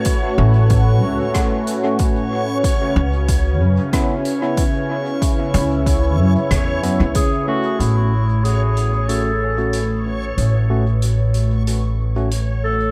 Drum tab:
HH |x-x-xxx-|x-x-xxx-|xxx-xxx-|x-xxx-x-|
SD |----r---|----r---|----r---|--------|
BD |o-o-o-o-|o-o-o-o-|o-o-o-o-|--------|

HH |x-xxx-x-|
SD |--------|
BD |--------|